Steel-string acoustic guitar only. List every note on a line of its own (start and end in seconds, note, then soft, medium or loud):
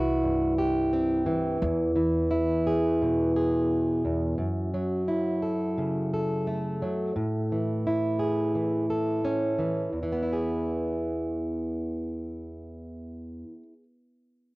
0.00 1.26 E3 medium
0.00 2.30 E4 medium
0.00 0.57 F#4 soft
0.23 1.57 G2 medium
0.58 1.57 G4 soft
0.93 1.57 C4 medium
1.26 1.95 E3 medium
1.62 4.04 E2 medium
1.96 4.73 E3 medium
2.31 4.41 E4 medium
2.67 3.35 G#4 soft
3.02 4.39 B2 medium
3.36 4.35 G#4 soft
4.05 4.38 E2 medium
4.38 7.11 F#2 medium
4.74 6.81 F#3 medium
5.08 7.86 E4 soft
5.42 6.12 A4 soft
5.78 6.81 C#3 medium
6.14 7.13 A4 soft
6.47 9.24 A3 soft
6.82 7.12 F#3 medium
7.16 9.90 A2 medium
7.52 8.54 E3 soft
7.87 9.90 E4 soft
8.19 8.89 G#4 soft
8.55 9.57 E3 soft
8.90 9.90 A4 soft
9.25 9.90 C#4 soft
9.59 10.02 E3 soft
9.93 13.43 E2 soft
10.03 13.53 E3 soft
10.12 13.62 B3 soft
10.23 13.73 E4 soft
10.33 13.83 G#4 soft